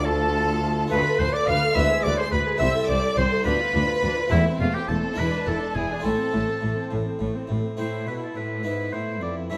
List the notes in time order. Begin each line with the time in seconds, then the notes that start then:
Already playing: D2 A3 D4 F4
0.05 F4 A4 A5
0.87 A3 B3 F4 B4 B5
0.91 D2 B4
1.06 A4
1.19 D2 B4 C5 C6
1.33 A4 D5 D6
1.47 D2 B4 F5 F6
1.63 A4
1.71 G#3 B3 E4 E5
1.76 D2 B4 E5 E6
1.90 G#4
2.03 D2 B4 D5 D6
2.17 G#4 C5 C6
2.31 D2 B4 B5
2.47 G#4
2.57 C2 A3 C4 E4 C5 E5 E6
2.61 C2 E5
2.74 A4
2.88 C2 C5 D5 D6
3.02 A4
3.16 C2 C5 C6
3.20 C5
3.29 A4
3.43 D2 B3 D4 F4 B4 B5
3.47 D2 B4
3.58 F4
3.72 D2 D4
3.76 D2
3.86 F4
4.01 D2 D4
4.15 F4
4.27 E1 E2 A3 C4 E4 E5
4.32 E2 E4
4.46 C4
4.59 E1 E2 A3 F4 F5
4.74 C4 G4 G5
4.88 E1 E2 A3 A4 A5
5.04 C4
5.14 G#3 D4 E4 B4 B5
5.18 E1 E2 B4
5.31 D4
5.45 E1 E2 E4 A4 A5
5.60 D4
5.75 E1 E2 E4 G#4 G#5
5.90 D4
5.99 A3 C4 E4
6.04 A1 A2 A3 A4 A5
6.19 C4
6.32 A1 A2 A3
6.48 C4
6.61 A1 A2 A3
6.76 C4
6.91 A1 A2 A3
7.06 C4
7.19 A1 A2 A3
7.36 C4
7.47 A1 A2 A3
7.64 C4
7.77 A2 A3 C4 E4 C5 A5
8.07 B2 B4
8.23 A4
8.36 A2 B4
8.63 G#2 B3 E4 B5
8.93 A2 C5
9.22 F2 D5
9.49 G2 A3 C#4 E4 E5 A5